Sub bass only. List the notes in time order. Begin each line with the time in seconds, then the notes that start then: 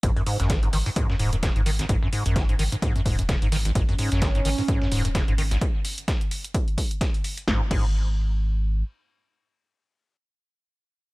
0.03 G#1
0.40 G#1
0.73 G#1
1.20 D#1
1.56 G#1
1.89 G#1
2.26 G#1
2.59 G#1
3.06 D#1
3.42 G#1
3.75 G#1
4.12 G#1
4.45 G#1
4.92 D#1
5.28 G#1
7.48 G#1
7.71 G#1